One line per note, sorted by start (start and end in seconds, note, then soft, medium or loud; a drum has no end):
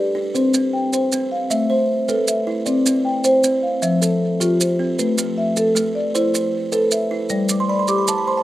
0.00 0.15 G4 medium
0.00 0.35 A4 medium
0.00 0.54 D5 medium
0.15 0.54 D4 medium
0.35 0.73 C4 medium
0.35 0.73 C5 medium
0.35 maracas soft
0.54 0.93 C4 medium
0.54 maracas medium
0.73 1.31 G5 medium
0.93 1.31 C5 medium
0.93 1.51 C5 medium
0.93 maracas medium
1.12 1.51 C4 medium
1.12 maracas medium
1.32 1.70 F5 medium
1.50 1.89 A3 medium
1.50 1.70 E5 medium
1.50 maracas medium
1.70 2.28 C5 medium
2.08 2.47 A3 medium
2.08 2.48 A4 medium
2.08 2.67 B4 medium
2.08 maracas medium
2.28 2.86 E5 medium
2.28 maracas medium
2.47 2.86 E4 medium
2.66 3.05 C4 medium
2.66 3.05 D5 medium
2.66 maracas medium
2.86 3.25 C4 medium
2.86 maracas medium
3.05 3.63 G5 medium
3.24 3.83 C5 medium
3.24 3.63 C5 medium
3.24 maracas medium
3.44 3.83 C4 medium
3.44 maracas medium
3.63 4.02 F5 medium
3.82 4.21 F3 medium
3.82 4.02 E5 medium
3.82 maracas medium
4.02 4.60 A4 medium
4.02 maracas medium
4.40 4.79 F3 medium
4.40 4.79 F4 medium
4.40 4.98 G4 medium
4.40 maracas medium
4.60 5.18 C5 medium
4.60 maracas medium
4.79 5.18 C4 medium
4.99 5.38 A3 medium
4.99 5.37 B4 medium
4.99 maracas medium
5.18 5.57 A3 medium
5.18 maracas medium
5.38 5.95 E5 medium
5.56 6.15 A4 medium
5.56 5.96 A4 medium
5.56 maracas medium
5.75 6.14 A3 medium
5.75 maracas medium
5.95 6.53 D5 medium
6.15 6.53 E4 medium
6.15 6.33 C5 medium
6.15 maracas medium
6.34 6.92 C5 medium
6.34 maracas medium
6.72 7.11 A4 medium
6.72 7.30 B4 medium
6.72 maracas medium
6.91 7.50 E5 medium
6.91 maracas medium
7.11 7.50 E4 medium
7.29 7.69 G3 medium
7.29 7.69 D5 medium
7.29 maracas medium
7.49 7.89 G3 medium
7.49 maracas medium
7.60 7.78 C6 medium
7.69 8.27 D5 medium
7.69 7.87 B5 medium
7.79 7.97 C6 medium
7.88 8.27 G4 medium
7.88 8.06 D6 medium
7.88 maracas medium
7.98 8.16 B5 medium
8.08 8.43 G3 medium
8.08 8.26 A5 medium
8.08 maracas medium
8.18 8.36 B5 medium
8.27 8.43 C5 medium
8.27 8.43 C6 medium
8.37 8.43 A5 medium